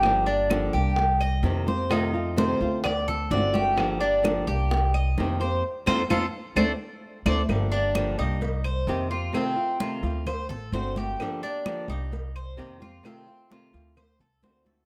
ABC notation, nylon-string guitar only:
X:1
M:4/4
L:1/8
Q:1/4=130
K:Gm
V:1 name="Nylon-string guitar"
[D,F,B,DG] [B,DG] [D,F,B,DG] [B,DG] z2 [C,E,B,CG] [B,CG] | [C,E,A,CF] [A,CF] [C,E,A,CF] [A,CF] z2 [D,A,C^F] [A,CF] | [D,F,B,DG] [B,DG] [D,F,B,DG] [B,DG] z2 [C,E,B,CG] [B,CG] | z [CEF] [CEF] z [A,CD] z2 [A,CD] |
[D,F,B,DG] [B,DG] [D,F,B,DG] [B,DG] z2 [C,E,B,CG] [B,CG] | [C,E,A,CF] [A,CF] [C,E,A,CF] [A,CF] z2 [D,A,C^F] [A,CF] | [D,F,B,DG] [B,DG] [D,F,B,DG] [B,DG] z2 [C,E,B,CG] [B,CG] | [C,E,A,CF] [A,CF] [C,E,A,CF] [A,CF] z2 [D,A,C^F] [A,CF] |]